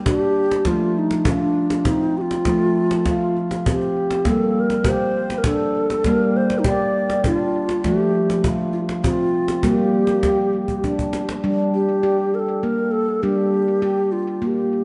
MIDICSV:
0, 0, Header, 1, 4, 480
1, 0, Start_track
1, 0, Key_signature, -2, "minor"
1, 0, Tempo, 598205
1, 542, Time_signature, 3, 2, 24, 8
1, 11909, End_track
2, 0, Start_track
2, 0, Title_t, "Native American-style wooden flute"
2, 0, Program_c, 0, 77
2, 67, Note_on_c, 0, 67, 96
2, 536, Note_on_c, 0, 65, 83
2, 548, Note_off_c, 0, 67, 0
2, 791, Note_on_c, 0, 63, 78
2, 803, Note_off_c, 0, 65, 0
2, 1027, Note_on_c, 0, 62, 89
2, 1039, Note_off_c, 0, 63, 0
2, 1499, Note_on_c, 0, 63, 80
2, 1511, Note_off_c, 0, 62, 0
2, 1746, Note_on_c, 0, 67, 88
2, 1758, Note_off_c, 0, 63, 0
2, 1775, Note_on_c, 0, 65, 96
2, 1783, Note_off_c, 0, 67, 0
2, 2703, Note_off_c, 0, 65, 0
2, 2971, Note_on_c, 0, 67, 74
2, 3436, Note_on_c, 0, 69, 79
2, 3448, Note_off_c, 0, 67, 0
2, 3692, Note_on_c, 0, 70, 81
2, 3704, Note_off_c, 0, 69, 0
2, 3923, Note_on_c, 0, 72, 88
2, 3935, Note_off_c, 0, 70, 0
2, 4318, Note_on_c, 0, 70, 60
2, 4330, Note_off_c, 0, 72, 0
2, 4382, Note_on_c, 0, 69, 78
2, 4394, Note_off_c, 0, 70, 0
2, 4878, Note_on_c, 0, 70, 89
2, 4890, Note_off_c, 0, 69, 0
2, 5108, Note_on_c, 0, 72, 87
2, 5120, Note_off_c, 0, 70, 0
2, 5287, Note_on_c, 0, 63, 75
2, 5299, Note_off_c, 0, 72, 0
2, 5357, Note_on_c, 0, 74, 97
2, 5369, Note_off_c, 0, 63, 0
2, 5826, Note_on_c, 0, 65, 82
2, 5838, Note_off_c, 0, 74, 0
2, 6290, Note_on_c, 0, 67, 82
2, 6302, Note_off_c, 0, 65, 0
2, 6796, Note_off_c, 0, 67, 0
2, 7004, Note_on_c, 0, 65, 74
2, 7059, Note_off_c, 0, 65, 0
2, 7251, Note_on_c, 0, 65, 82
2, 7743, Note_on_c, 0, 67, 89
2, 7755, Note_off_c, 0, 65, 0
2, 8700, Note_off_c, 0, 67, 0
2, 9425, Note_on_c, 0, 67, 83
2, 9906, Note_on_c, 0, 70, 67
2, 9918, Note_off_c, 0, 67, 0
2, 9944, Note_on_c, 0, 69, 73
2, 9952, Note_off_c, 0, 70, 0
2, 10138, Note_on_c, 0, 70, 83
2, 10150, Note_off_c, 0, 69, 0
2, 10363, Note_on_c, 0, 69, 93
2, 10375, Note_off_c, 0, 70, 0
2, 10612, Note_on_c, 0, 67, 79
2, 10624, Note_off_c, 0, 69, 0
2, 11330, Note_on_c, 0, 65, 63
2, 11342, Note_off_c, 0, 67, 0
2, 11609, Note_on_c, 0, 67, 62
2, 11621, Note_off_c, 0, 65, 0
2, 11909, Note_off_c, 0, 67, 0
2, 11909, End_track
3, 0, Start_track
3, 0, Title_t, "Handpan"
3, 0, Program_c, 1, 114
3, 0, Note_on_c, 1, 55, 73
3, 52, Note_on_c, 1, 62, 78
3, 506, Note_off_c, 1, 55, 0
3, 528, Note_on_c, 1, 53, 71
3, 536, Note_off_c, 1, 62, 0
3, 538, Note_on_c, 1, 57, 77
3, 1019, Note_off_c, 1, 57, 0
3, 1019, Note_on_c, 1, 65, 71
3, 1496, Note_on_c, 1, 60, 72
3, 1500, Note_off_c, 1, 65, 0
3, 1945, Note_off_c, 1, 53, 0
3, 1973, Note_on_c, 1, 53, 74
3, 1978, Note_off_c, 1, 60, 0
3, 1980, Note_on_c, 1, 57, 81
3, 2455, Note_on_c, 1, 65, 75
3, 2460, Note_off_c, 1, 57, 0
3, 2938, Note_off_c, 1, 65, 0
3, 2944, Note_on_c, 1, 60, 74
3, 3388, Note_off_c, 1, 53, 0
3, 3422, Note_off_c, 1, 60, 0
3, 3422, Note_on_c, 1, 58, 84
3, 3432, Note_on_c, 1, 55, 69
3, 3901, Note_off_c, 1, 58, 0
3, 3901, Note_on_c, 1, 67, 72
3, 4381, Note_off_c, 1, 67, 0
3, 4384, Note_on_c, 1, 62, 76
3, 4838, Note_off_c, 1, 55, 0
3, 4861, Note_on_c, 1, 58, 86
3, 4862, Note_off_c, 1, 62, 0
3, 4866, Note_on_c, 1, 55, 78
3, 5337, Note_on_c, 1, 67, 76
3, 5341, Note_off_c, 1, 58, 0
3, 5819, Note_off_c, 1, 67, 0
3, 5822, Note_on_c, 1, 62, 75
3, 6274, Note_off_c, 1, 55, 0
3, 6295, Note_on_c, 1, 57, 84
3, 6301, Note_off_c, 1, 62, 0
3, 6306, Note_on_c, 1, 53, 80
3, 6774, Note_on_c, 1, 65, 68
3, 6777, Note_off_c, 1, 57, 0
3, 7253, Note_on_c, 1, 60, 78
3, 7256, Note_off_c, 1, 65, 0
3, 7713, Note_off_c, 1, 53, 0
3, 7735, Note_off_c, 1, 60, 0
3, 7735, Note_on_c, 1, 55, 83
3, 7736, Note_on_c, 1, 58, 86
3, 8213, Note_on_c, 1, 67, 69
3, 8217, Note_off_c, 1, 58, 0
3, 8695, Note_off_c, 1, 67, 0
3, 8699, Note_on_c, 1, 62, 69
3, 9147, Note_off_c, 1, 55, 0
3, 9169, Note_off_c, 1, 62, 0
3, 9176, Note_on_c, 1, 55, 71
3, 9179, Note_on_c, 1, 62, 77
3, 9655, Note_on_c, 1, 67, 62
3, 9658, Note_off_c, 1, 62, 0
3, 10136, Note_off_c, 1, 67, 0
3, 10136, Note_on_c, 1, 58, 66
3, 10588, Note_off_c, 1, 55, 0
3, 10616, Note_on_c, 1, 62, 72
3, 10617, Note_off_c, 1, 58, 0
3, 10617, Note_on_c, 1, 55, 72
3, 11091, Note_on_c, 1, 67, 67
3, 11097, Note_off_c, 1, 62, 0
3, 11569, Note_on_c, 1, 58, 68
3, 11574, Note_off_c, 1, 67, 0
3, 11909, Note_off_c, 1, 55, 0
3, 11909, Note_off_c, 1, 58, 0
3, 11909, End_track
4, 0, Start_track
4, 0, Title_t, "Cajon"
4, 48, Note_on_c, 9, 36, 61
4, 128, Note_off_c, 9, 36, 0
4, 169, Note_on_c, 9, 38, 19
4, 250, Note_off_c, 9, 38, 0
4, 413, Note_on_c, 9, 38, 48
4, 493, Note_off_c, 9, 38, 0
4, 521, Note_on_c, 9, 36, 53
4, 521, Note_on_c, 9, 38, 17
4, 602, Note_off_c, 9, 36, 0
4, 602, Note_off_c, 9, 38, 0
4, 888, Note_on_c, 9, 38, 44
4, 969, Note_off_c, 9, 38, 0
4, 1004, Note_on_c, 9, 36, 65
4, 1084, Note_off_c, 9, 36, 0
4, 1367, Note_on_c, 9, 38, 49
4, 1447, Note_off_c, 9, 38, 0
4, 1486, Note_on_c, 9, 36, 59
4, 1566, Note_off_c, 9, 36, 0
4, 1615, Note_on_c, 9, 38, 19
4, 1695, Note_off_c, 9, 38, 0
4, 1852, Note_on_c, 9, 38, 45
4, 1933, Note_off_c, 9, 38, 0
4, 1968, Note_on_c, 9, 36, 57
4, 1968, Note_on_c, 9, 38, 17
4, 2048, Note_off_c, 9, 36, 0
4, 2048, Note_off_c, 9, 38, 0
4, 2210, Note_on_c, 9, 38, 19
4, 2290, Note_off_c, 9, 38, 0
4, 2334, Note_on_c, 9, 38, 48
4, 2415, Note_off_c, 9, 38, 0
4, 2452, Note_on_c, 9, 36, 54
4, 2452, Note_on_c, 9, 38, 19
4, 2532, Note_off_c, 9, 36, 0
4, 2532, Note_off_c, 9, 38, 0
4, 2579, Note_on_c, 9, 38, 19
4, 2659, Note_off_c, 9, 38, 0
4, 2701, Note_on_c, 9, 38, 21
4, 2781, Note_off_c, 9, 38, 0
4, 2816, Note_on_c, 9, 38, 45
4, 2896, Note_off_c, 9, 38, 0
4, 2939, Note_on_c, 9, 36, 61
4, 3019, Note_off_c, 9, 36, 0
4, 3057, Note_on_c, 9, 38, 20
4, 3137, Note_off_c, 9, 38, 0
4, 3294, Note_on_c, 9, 38, 44
4, 3375, Note_off_c, 9, 38, 0
4, 3411, Note_on_c, 9, 36, 59
4, 3411, Note_on_c, 9, 38, 17
4, 3491, Note_off_c, 9, 36, 0
4, 3491, Note_off_c, 9, 38, 0
4, 3771, Note_on_c, 9, 38, 40
4, 3851, Note_off_c, 9, 38, 0
4, 3887, Note_on_c, 9, 36, 61
4, 3967, Note_off_c, 9, 36, 0
4, 4253, Note_on_c, 9, 38, 41
4, 4333, Note_off_c, 9, 38, 0
4, 4364, Note_on_c, 9, 36, 55
4, 4444, Note_off_c, 9, 36, 0
4, 4487, Note_on_c, 9, 38, 18
4, 4567, Note_off_c, 9, 38, 0
4, 4735, Note_on_c, 9, 38, 44
4, 4816, Note_off_c, 9, 38, 0
4, 4849, Note_on_c, 9, 36, 53
4, 4849, Note_on_c, 9, 38, 17
4, 4930, Note_off_c, 9, 36, 0
4, 4930, Note_off_c, 9, 38, 0
4, 5215, Note_on_c, 9, 38, 41
4, 5295, Note_off_c, 9, 38, 0
4, 5331, Note_on_c, 9, 36, 55
4, 5412, Note_off_c, 9, 36, 0
4, 5694, Note_on_c, 9, 38, 42
4, 5774, Note_off_c, 9, 38, 0
4, 5810, Note_on_c, 9, 36, 54
4, 5890, Note_off_c, 9, 36, 0
4, 5931, Note_on_c, 9, 38, 18
4, 6012, Note_off_c, 9, 38, 0
4, 6169, Note_on_c, 9, 38, 43
4, 6250, Note_off_c, 9, 38, 0
4, 6293, Note_on_c, 9, 36, 47
4, 6293, Note_on_c, 9, 38, 15
4, 6373, Note_off_c, 9, 36, 0
4, 6373, Note_off_c, 9, 38, 0
4, 6658, Note_on_c, 9, 38, 41
4, 6738, Note_off_c, 9, 38, 0
4, 6773, Note_on_c, 9, 36, 54
4, 6853, Note_off_c, 9, 36, 0
4, 7133, Note_on_c, 9, 38, 41
4, 7213, Note_off_c, 9, 38, 0
4, 7255, Note_on_c, 9, 36, 56
4, 7336, Note_off_c, 9, 36, 0
4, 7372, Note_on_c, 9, 38, 18
4, 7453, Note_off_c, 9, 38, 0
4, 7609, Note_on_c, 9, 38, 44
4, 7689, Note_off_c, 9, 38, 0
4, 7727, Note_on_c, 9, 36, 48
4, 7808, Note_off_c, 9, 36, 0
4, 8082, Note_on_c, 9, 38, 37
4, 8162, Note_off_c, 9, 38, 0
4, 8208, Note_on_c, 9, 36, 55
4, 8208, Note_on_c, 9, 38, 15
4, 8289, Note_off_c, 9, 36, 0
4, 8289, Note_off_c, 9, 38, 0
4, 8451, Note_on_c, 9, 38, 17
4, 8531, Note_off_c, 9, 38, 0
4, 8571, Note_on_c, 9, 36, 33
4, 8651, Note_off_c, 9, 36, 0
4, 8696, Note_on_c, 9, 36, 36
4, 8776, Note_off_c, 9, 36, 0
4, 8818, Note_on_c, 9, 36, 39
4, 8898, Note_off_c, 9, 36, 0
4, 8931, Note_on_c, 9, 38, 44
4, 9011, Note_off_c, 9, 38, 0
4, 9057, Note_on_c, 9, 38, 46
4, 9137, Note_off_c, 9, 38, 0
4, 11909, End_track
0, 0, End_of_file